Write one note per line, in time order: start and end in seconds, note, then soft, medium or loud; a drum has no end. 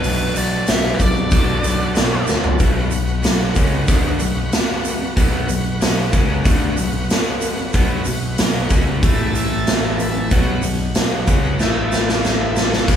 0.00 1.30 B2 medium
0.00 1.30 F#3 medium
0.00 1.31 B3 medium
0.00 1.31 D4 loud
0.00 1.31 D4 medium
0.00 1.31 F#4 medium
0.00 1.31 A4 medium
0.00 0.37 B4 medium
0.00 1.31 B4 medium
0.00 open hi-hat medium
0.00 shaker medium
0.05 0.30 B1 medium
0.35 0.61 B1 medium
0.35 0.70 D5 medium
0.35 open hi-hat medium
0.35 shaker loud
0.66 0.94 B1 medium
0.66 0.95 E5 medium
0.66 snare loud
0.66 open hi-hat medium
0.66 shaker medium
0.94 1.00 B4 medium
1.00 1.25 B1 medium
1.00 2.25 D5 medium
1.00 kick medium
1.00 open hi-hat medium
1.00 shaker medium
1.16 shaker soft
1.30 1.57 B1 medium
1.30 2.58 B2 medium
1.30 2.58 F#3 medium
1.30 2.59 B3 medium
1.30 2.59 D4 medium
1.30 2.59 F#4 medium
1.30 2.59 A4 medium
1.30 2.58 B4 medium
1.30 kick loud
1.30 open hi-hat medium
1.30 shaker medium
1.64 1.90 B1 medium
1.64 open hi-hat medium
1.64 shaker loud
1.95 2.21 B1 medium
1.95 snare loud
1.95 open hi-hat medium
1.95 shaker medium
2.27 2.54 D2 medium
2.27 snare medium
2.27 shaker loud
2.43 floor tom medium
2.43 shaker soft
2.59 2.90 B1 medium
2.59 2.90 B2 loud
2.59 2.91 F#3 loud
2.59 2.91 B3 medium
2.59 5.14 F#4 medium
2.59 5.14 B4 medium
2.59 5.14 F#5 medium
2.59 kick medium
2.59 open hi-hat medium
2.59 shaker medium
2.91 3.23 B1 medium
2.91 3.18 B2 medium
2.91 3.18 F#3 medium
2.91 open hi-hat medium
2.91 shaker loud
3.07 shaker soft
3.23 3.55 B1 medium
3.23 3.50 B2 medium
3.23 3.50 F#3 medium
3.23 snare loud
3.23 open hi-hat medium
3.23 shaker medium
3.55 3.86 C#2 medium
3.55 3.87 C#3 medium
3.55 3.88 G#3 medium
3.55 3.88 C#4 medium
3.55 kick medium
3.55 open hi-hat medium
3.55 shaker medium
3.87 4.18 D2 medium
3.87 4.20 D3 medium
3.87 4.20 A3 medium
3.87 4.20 D4 medium
3.87 kick loud
3.87 open hi-hat medium
3.87 shaker medium
4.19 4.51 B1 medium
4.19 4.46 B2 medium
4.19 4.46 F#3 medium
4.19 open hi-hat medium
4.19 shaker loud
4.52 snare loud
4.52 open hi-hat medium
4.52 shaker medium
4.85 open hi-hat medium
4.85 shaker loud
5.16 5.47 B1 medium
5.16 5.48 B2 medium
5.16 5.48 F#3 loud
5.16 5.49 B3 medium
5.16 7.71 F#4 medium
5.16 7.72 B4 medium
5.16 7.71 F#5 medium
5.16 kick loud
5.16 open hi-hat medium
5.16 shaker medium
5.49 5.79 B1 medium
5.49 5.75 B2 medium
5.49 5.75 F#3 medium
5.49 open hi-hat medium
5.49 shaker loud
5.65 shaker soft
5.81 6.12 B1 medium
5.81 6.07 B2 medium
5.81 6.07 F#3 medium
5.81 snare loud
5.81 open hi-hat medium
5.81 shaker medium
6.13 6.43 C#2 medium
6.13 6.44 C#3 medium
6.13 6.44 G#3 medium
6.13 6.45 C#4 medium
6.13 kick loud
6.13 open hi-hat soft
6.13 shaker medium
6.45 6.76 D2 loud
6.45 6.77 D3 medium
6.45 6.77 A3 medium
6.45 6.77 D4 loud
6.45 kick loud
6.45 open hi-hat medium
6.45 shaker medium
6.77 7.08 B1 medium
6.77 7.03 B2 medium
6.77 7.03 F#3 medium
6.77 open hi-hat medium
6.77 shaker loud
7.10 snare loud
7.10 open hi-hat medium
7.10 shaker medium
7.41 open hi-hat medium
7.41 shaker loud
7.57 shaker soft
7.73 8.04 B1 medium
7.73 8.05 B2 medium
7.73 8.06 F#3 loud
7.73 8.06 B3 loud
7.73 9.02 F#4 medium
7.73 9.02 B4 medium
7.73 9.02 F#5 medium
7.73 kick loud
7.73 open hi-hat medium
7.73 shaker medium
8.05 8.37 B1 medium
8.05 8.32 B2 medium
8.05 8.32 F#3 medium
8.05 open hi-hat medium
8.05 shaker medium
8.22 shaker soft
8.38 8.69 B1 medium
8.38 8.64 B2 medium
8.38 8.65 F#3 medium
8.38 snare loud
8.38 open hi-hat medium
8.38 shaker medium
8.70 9.01 C#2 loud
8.70 9.02 C#3 medium
8.70 9.02 G#3 medium
8.70 9.02 C#4 medium
8.70 kick loud
8.70 open hi-hat medium
8.70 shaker medium
9.03 10.28 A1 medium
9.03 10.31 A2 medium
9.03 10.31 E3 medium
9.03 10.31 A3 loud
9.03 10.31 E4 medium
9.03 10.31 A4 medium
9.03 10.31 E5 medium
9.03 10.31 A5 medium
9.03 kick loud
9.03 open hi-hat medium
9.03 shaker medium
9.35 open hi-hat medium
9.35 shaker loud
9.67 snare loud
9.67 open hi-hat medium
9.67 shaker medium
9.99 open hi-hat medium
9.99 shaker medium
10.16 shaker soft
10.30 10.61 B1 medium
10.30 10.62 B2 loud
10.30 10.63 F#3 loud
10.30 10.63 B3 loud
10.30 11.59 F#4 medium
10.30 11.59 B4 medium
10.30 11.59 F#5 medium
10.30 kick loud
10.30 open hi-hat medium
10.30 shaker medium
10.62 10.94 B1 medium
10.62 10.89 B2 medium
10.62 10.90 F#3 medium
10.62 open hi-hat medium
10.62 shaker loud
10.78 shaker soft
10.95 11.26 B1 medium
10.95 11.22 B2 medium
10.95 11.22 F#3 medium
10.95 snare loud
10.95 open hi-hat medium
10.95 shaker medium
11.27 11.58 C#2 medium
11.27 11.59 C#3 medium
11.27 11.59 G#3 loud
11.27 11.60 C#4 medium
11.27 kick medium
11.27 open hi-hat soft
11.27 shaker loud
11.44 shaker soft
11.59 12.85 A1 medium
11.59 12.88 A2 medium
11.59 12.88 E3 loud
11.59 12.88 A3 loud
11.59 12.88 E4 medium
11.59 12.88 A4 medium
11.59 12.88 E5 medium
11.59 12.89 A5 medium
11.59 snare medium
11.59 shaker medium
11.92 snare medium
11.92 shaker medium
12.08 snare medium
12.08 shaker soft
12.24 snare medium
12.24 shaker medium
12.56 snare medium
12.56 shaker medium
12.73 snare medium
12.73 shaker soft
12.87 12.96 B1 medium
12.87 12.96 B2 loud
12.87 12.96 F#3 medium
12.87 12.96 B3 loud
12.87 12.96 F#4 medium
12.87 12.96 B4 medium
12.87 12.96 F#5 medium
12.87 kick loud
12.87 crash loud
12.87 shaker medium